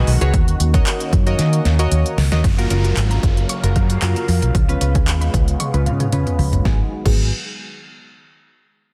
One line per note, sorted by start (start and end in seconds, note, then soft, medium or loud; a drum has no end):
0.00 2.40 D#3 medium
0.00 0.30 G#3 medium
0.00 0.30 B3 medium
0.00 2.40 F#4 loud
0.07 0.18 B1 loud
0.07 open hi-hat medium
0.21 0.31 C#2 medium
0.21 0.34 F#4 medium
0.21 0.34 G#4 medium
0.21 0.34 B4 medium
0.21 0.34 C#5 medium
0.21 closed hi-hat soft
0.34 0.54 D#2 loud
0.34 2.42 A#3 medium
0.34 2.42 C#4 medium
0.34 kick loud
0.34 closed hi-hat medium
0.48 closed hi-hat medium
0.60 0.80 D#2 loud
0.60 closed hi-hat medium
0.74 1.15 F#4 medium
0.74 1.15 A#4 medium
0.74 1.15 C#5 medium
0.74 1.15 D#5 medium
0.74 kick loud
0.74 closed hi-hat medium
0.86 clap loud
0.86 closed hi-hat medium
1.00 closed hi-hat soft
1.13 1.33 F#2 loud
1.13 kick medium
1.13 closed hi-hat medium
1.26 1.68 F#4 medium
1.26 1.68 A#4 medium
1.26 1.68 C#5 medium
1.26 1.68 D#5 loud
1.26 closed hi-hat soft
1.39 1.59 D#3 loud
1.39 snare medium
1.39 closed hi-hat loud
1.53 closed hi-hat medium
1.65 1.86 D#2 loud
1.65 snare medium
1.65 closed hi-hat medium
1.79 2.20 F#4 loud
1.79 2.20 A#4 medium
1.79 2.20 C#5 medium
1.79 2.20 D#5 loud
1.79 closed hi-hat medium
1.91 2.02 D#2 medium
1.91 closed hi-hat loud
2.06 closed hi-hat soft
2.18 2.29 C#2 loud
2.18 snare loud
2.18 open hi-hat medium
2.32 2.41 D#2 medium
2.32 2.44 F#4 medium
2.32 2.44 A#4 medium
2.32 2.44 C#5 medium
2.32 2.44 D#5 loud
2.32 snare loud
2.32 closed hi-hat medium
2.44 2.65 F#1 loud
2.44 4.53 C#3 medium
2.44 2.57 F3 medium
2.44 4.53 F#3 medium
2.44 4.53 A#3 medium
2.44 6.61 F5 medium
2.44 kick loud
2.44 closed hi-hat medium
2.44 downlifter medium
2.58 2.70 A#3 medium
2.58 2.68 F4 medium
2.58 2.68 F#4 medium
2.58 2.68 A#4 loud
2.58 closed hi-hat medium
2.70 2.91 F#1 medium
2.70 2.83 C#4 medium
2.70 3.44 F4 loud
2.70 3.44 F#4 medium
2.70 3.44 A#4 loud
2.70 closed hi-hat medium
2.84 2.96 F#4 medium
2.84 closed hi-hat medium
2.97 3.17 G#1 loud
2.97 clap loud
2.97 closed hi-hat medium
3.11 3.22 A#5 medium
3.11 closed hi-hat soft
3.23 3.43 F#1 medium
3.23 kick medium
3.23 closed hi-hat medium
3.37 closed hi-hat soft
3.49 3.62 C#6 loud
3.49 closed hi-hat medium
3.63 3.73 F#1 loud
3.63 3.94 F4 medium
3.63 3.94 F#4 medium
3.63 3.95 A#4 loud
3.63 3.75 A#5 medium
3.63 closed hi-hat medium
3.76 3.96 F#2 loud
3.76 3.89 F5 medium
3.76 kick medium
3.76 closed hi-hat medium
3.90 4.01 F#4 medium
3.90 closed hi-hat medium
4.02 4.13 F#2 loud
4.02 4.15 C#4 medium
4.02 4.54 F4 loud
4.02 4.54 F#4 medium
4.02 4.54 A#4 loud
4.02 clap loud
4.02 closed hi-hat loud
4.16 4.28 A#3 medium
4.16 closed hi-hat soft
4.28 4.39 F2 medium
4.28 4.42 F3 medium
4.28 open hi-hat medium
4.42 4.52 B1 medium
4.42 4.54 A#3 medium
4.42 closed hi-hat soft
4.55 4.75 C#2 loud
4.55 6.63 C#3 medium
4.55 4.68 F3 loud
4.55 6.63 G#3 medium
4.55 6.63 B3 medium
4.55 kick loud
4.55 closed hi-hat medium
4.69 4.80 B3 medium
4.69 4.78 C#4 medium
4.69 4.79 F4 medium
4.69 4.79 B4 loud
4.69 closed hi-hat medium
4.81 5.07 C#2 loud
4.81 4.94 C#4 medium
4.81 5.54 C#4 medium
4.81 5.54 F4 medium
4.81 5.55 B4 loud
4.81 closed hi-hat medium
4.95 5.06 G#4 medium
4.95 kick loud
4.95 closed hi-hat medium
5.07 5.28 D#2 loud
5.07 clap loud
5.07 closed hi-hat medium
5.21 5.33 B5 medium
5.21 closed hi-hat soft
5.34 5.54 C#2 medium
5.34 kick medium
5.34 closed hi-hat medium
5.48 closed hi-hat soft
5.60 5.73 C#6 loud
5.60 closed hi-hat loud
5.60 high tom medium
5.74 5.88 C#2 loud
5.74 6.05 C#4 medium
5.74 6.05 F4 medium
5.74 6.05 B4 loud
5.74 5.85 B5 medium
5.74 closed hi-hat medium
5.74 high tom medium
5.86 6.07 C#3 loud
5.86 5.99 F5 medium
5.86 6.11 F5 medium
5.86 closed hi-hat medium
5.86 mid tom medium
6.00 6.12 G#4 medium
6.00 closed hi-hat medium
6.00 mid tom medium
6.12 6.23 C#3 loud
6.12 6.26 C#4 medium
6.12 6.65 C#4 loud
6.12 6.65 F4 medium
6.12 6.65 B4 loud
6.12 6.37 G#5 medium
6.12 closed hi-hat loud
6.12 mid tom medium
6.27 6.38 B3 medium
6.27 closed hi-hat soft
6.27 mid tom medium
6.39 6.50 C#2 medium
6.39 6.52 F3 medium
6.39 6.63 B5 medium
6.39 floor tom loud
6.39 open hi-hat medium
6.53 6.62 F#1 loud
6.53 6.64 B3 medium
6.53 closed hi-hat soft
6.53 floor tom medium
6.65 6.81 G#1 loud
6.65 6.90 D#3 medium
6.65 6.81 F#3 medium
6.65 6.90 G#3 medium
6.65 6.90 B3 medium
6.65 6.81 B3 medium
6.65 6.81 D#4 medium
6.65 6.90 F#4 medium
6.65 6.81 F#4 medium
6.65 6.81 G#4 loud
6.65 6.81 G#4 medium
6.65 kick loud
6.65 snare medium
7.05 7.30 G#1 loud
7.05 7.30 F#3 medium
7.05 7.30 B3 medium
7.05 7.30 D#4 medium
7.05 7.30 F#4 medium
7.05 7.30 G#4 loud
7.05 7.30 G#4 medium
7.05 kick loud
7.05 crash medium